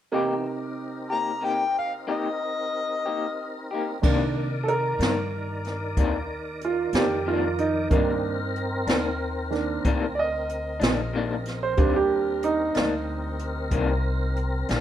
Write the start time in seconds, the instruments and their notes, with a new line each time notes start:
0.12 upright piano C3 D#4 G4 A#4 D6, clean electric guitar C3 A#3 D#4 G4, tonewheel organ E3 C4
0.16 tonewheel organ B3
0.45 tonewheel organ C4 D#4 A#4
1.10 clean electric guitar A#3 D#4 G4, harmonica A#5
1.41 clean electric guitar C3 A#3 D#4 G4, harmonica G5
1.78 harmonica F5
2.07 clean electric guitar C3 A#3 D#4 G4, harmonica D#5
3.06 clean electric guitar A#3 D#4 G4
3.71 clean electric guitar A#3 D#4 G4
4.02 upright bass C3, clean electric guitar C3 D#3 A#3 D4, upright piano D#3 A#3 D4, tonewheel organ D#3 A#4 D5, kick, crash
4.63 upright piano A4
4.68 upright piano A#4, closed hi-hat
4.99 upright bass G2, clean electric guitar D#3 A#3 D4, snare, closed hi-hat
5.64 snare, closed hi-hat
5.97 upright bass D#2, clean electric guitar C3 D#3 A#3 D4, kick, closed hi-hat
6.61 upright piano F4, closed hi-hat
6.93 upright bass F2, clean electric guitar A#3 D4, upright piano G4, snare, closed hi-hat
6.97 clean electric guitar D#3
7.26 clean electric guitar C3 D#3 A#3 D4, upright piano F4
7.58 upright piano D#4, closed hi-hat
7.90 upright bass G2, clean electric guitar C3 D#3 A#3 D4, upright piano D#3 A#3 D4, tonewheel organ C4 A#4, kick, closed hi-hat
8.56 closed hi-hat
8.87 upright bass D#2, clean electric guitar D#3 A#3 D4, snare, closed hi-hat
9.50 upright piano D#3 A#3 D4, snare, closed hi-hat
9.85 upright bass D2, clean electric guitar C3 D#3 A#3 D4, kick, closed hi-hat
10.15 upright piano D5
10.19 upright piano D#5
10.49 closed hi-hat
10.80 upright bass A#1, clean electric guitar D#3 A#3 D4, snare, closed hi-hat
11.14 clean electric guitar C3 D#3 A#3 D4
11.45 snare, closed hi-hat
11.63 upright piano C5
11.77 upright bass D#2, clean electric guitar C3 D#3 A#3 D4, upright piano G3 A#3 D4, tonewheel organ C4 A#4, kick, closed hi-hat
11.96 upright piano G4
12.43 upright piano D#4, closed hi-hat
12.75 upright bass D2, clean electric guitar D#3 A#3 D4, snare, closed hi-hat
13.39 closed hi-hat
13.71 upright bass C2, clean electric guitar C3 D#3 A#3 D4, kick, closed hi-hat
14.36 closed hi-hat
14.68 upright bass A#1, clean electric guitar D#3 A#3 D4, snare, closed hi-hat